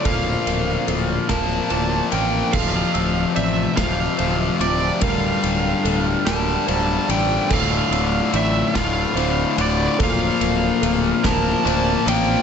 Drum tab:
CC |------|x-----|------|x-----|
RD |xxxxxx|-xxxxx|xxxxxx|-xxxxx|
SD |---o--|---o--|---o--|---o--|
BD |o--o--|o--o--|o-----|o--o--|

CC |------|
RD |xxxxxx|
SD |---o--|
BD |o--o--|